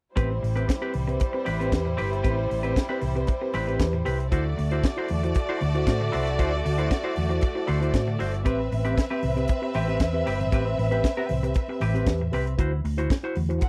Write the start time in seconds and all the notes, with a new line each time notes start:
0.16 A1 G3 C4 E4 G4 B4 C5, kick, closed hi-hat
0.30 muted clean electric guitar stroke
0.42 A1 A2 E3, muted clean electric guitar stroke, open hi-hat
0.56 C4 G4 B4, closed hi-hat
0.68 muted clean electric guitar stroke, kick, snare, closed hi-hat
0.81 C4 G4 B4
0.93 C2 A2 E3, muted clean electric guitar stroke, open hi-hat
1.07 C4 G4 B4, muted clean electric guitar stroke, closed hi-hat
1.20 muted clean electric guitar stroke, kick, closed hi-hat
1.33 C4 G4 B4, muted clean electric guitar stroke
1.45 A1 A2 E3 C4 G4 B4, open hi-hat
1.59 C4 G4 B4, closed hi-hat
1.72 E2 G4 B4, muted clean electric guitar stroke, kick, snare, closed hi-hat
1.85 A2 E3, muted clean electric guitar stroke
1.97 G1 C4 G4 B4, open hi-hat
2.11 muted clean electric guitar stroke, closed hi-hat
2.23 A1 C4 G4 B4, kick, closed hi-hat
2.37 muted clean electric guitar stroke
2.50 A1 A2 E3, muted clean electric guitar stroke, open hi-hat
2.63 C4 G4 B4, closed hi-hat
2.75 muted clean electric guitar stroke, kick, snare, closed hi-hat
2.89 C4 G4 B4
3.01 C2 A2 E3, muted clean electric guitar stroke, open hi-hat
3.15 C4 G4 B4, muted clean electric guitar stroke, closed hi-hat
3.27 muted clean electric guitar stroke, kick, closed hi-hat
3.41 C4 G4 B4, muted clean electric guitar stroke
3.53 A1 A2 E3 C4 G4 B4, open hi-hat
3.67 C4 G4 B4, closed hi-hat
3.79 E2 G4 B4, kick, snare, closed hi-hat
3.93 A2 E3, muted clean electric guitar stroke
4.05 C2 C4 G4 B4, open hi-hat
4.19 muted clean electric guitar stroke, closed hi-hat
4.31 D2 A3 E4 F#4 C5 D5, kick, closed hi-hat
4.46 muted clean electric guitar stroke
4.57 D2 D3 A3, muted clean electric guitar stroke, open hi-hat
4.71 E4 F#4 C5, closed hi-hat
4.84 muted clean electric guitar stroke, kick, snare, closed hi-hat
4.97 E4 F#4 C5
5.08 E2 D3 A3, muted clean electric guitar stroke, open hi-hat
5.23 E4 F#4 C5, muted clean electric guitar stroke, closed hi-hat
5.34 muted clean electric guitar stroke, kick, closed hi-hat
5.49 E4 F#4 C5
5.61 D2 D3 A3, muted clean electric guitar stroke, open hi-hat
5.75 E4 F#4 C5, muted clean electric guitar stroke, closed hi-hat
5.86 A2 F#4 C5, muted clean electric guitar stroke, kick, snare, closed hi-hat
6.01 D3 A3, muted clean electric guitar stroke
6.12 C2 E4 F#4 C5, open hi-hat
6.27 muted clean electric guitar stroke, closed hi-hat
6.38 D2 E4 F#4 C5, kick, closed hi-hat
6.53 muted clean electric guitar stroke
6.64 D2 D3 A3, muted clean electric guitar stroke, open hi-hat
6.78 E4 F#4 C5, closed hi-hat
6.91 muted clean electric guitar stroke, kick, snare, closed hi-hat
7.04 E4 F#4 C5
7.16 E2 D3 A3, muted clean electric guitar stroke, open hi-hat
7.29 E4 F#4 C5, muted clean electric guitar stroke, closed hi-hat
7.41 muted clean electric guitar stroke, kick, closed hi-hat
7.55 E4 F#4 C5, muted clean electric guitar stroke
7.67 D2 D3 A3 E4 F#4 C5, open hi-hat
7.81 E4 F#4 C5, closed hi-hat
7.93 A2 F#4 C5, muted clean electric guitar stroke, kick, snare, closed hi-hat
8.07 D3 A3, muted clean electric guitar stroke
8.19 G1 E4 F#4 C5, open hi-hat
8.33 muted clean electric guitar stroke, closed hi-hat
8.45 A1 C4 G4 B4 E5, kick, closed hi-hat
8.60 muted clean electric guitar stroke
8.71 A1 A2 E3, muted clean electric guitar stroke, open hi-hat
8.85 C4 G4 B4, closed hi-hat
8.97 muted clean electric guitar stroke, kick, snare, closed hi-hat
9.10 C4 G4 B4
9.22 C2 A2 E3, muted clean electric guitar stroke, open hi-hat
9.36 C4 G4 B4, muted clean electric guitar stroke, closed hi-hat
9.47 muted clean electric guitar stroke, kick, closed hi-hat
9.62 C4 G4 B4, muted clean electric guitar stroke
9.74 A1 A2 E3 C4 G4 B4, open hi-hat
9.88 C4 G4 B4, closed hi-hat
10.00 E2, kick, snare, closed hi-hat
10.13 C4 G4 B4, muted clean electric guitar stroke
10.26 G1 C4 G4 B4, open hi-hat
10.40 A2 E3, muted clean electric guitar stroke, closed hi-hat
10.52 A1 C4 G4 B4, kick, closed hi-hat
10.66 muted clean electric guitar stroke
10.77 A1 A2 E3, muted clean electric guitar stroke, open hi-hat
10.91 C4 G4 B4, closed hi-hat
11.04 muted clean electric guitar stroke, kick, snare, closed hi-hat
11.17 C4 G4 B4
11.29 C2 A2 E3, muted clean electric guitar stroke, open hi-hat
11.43 C4 G4 B4, muted clean electric guitar stroke, closed hi-hat
11.54 muted clean electric guitar stroke, kick, closed hi-hat
11.68 C4 G4 B4, muted clean electric guitar stroke
11.80 A1 A2 E3 C4 G4 B4, open hi-hat
11.94 C4 G4 B4, closed hi-hat
12.06 E2 G4 B4, muted clean electric guitar stroke, kick, snare, closed hi-hat
12.20 A2 E3, muted clean electric guitar stroke
12.32 C2 C4 G4 B4, open hi-hat
12.47 muted clean electric guitar stroke, closed hi-hat
12.58 D2 E4 F#4 C5, kick, closed hi-hat
12.73 muted clean electric guitar stroke
12.84 D2 D3 A3, muted clean electric guitar stroke, open hi-hat
12.97 E4 F#4 C5, closed hi-hat
13.10 muted clean electric guitar stroke, kick, snare, closed hi-hat
13.23 E4 F#4 C5
13.35 E2 D3 A3, muted clean electric guitar stroke, open hi-hat
13.49 E4 F#4 C5, muted clean electric guitar stroke, closed hi-hat
13.61 C4 A4 F#5, muted clean electric guitar stroke, kick, closed hi-hat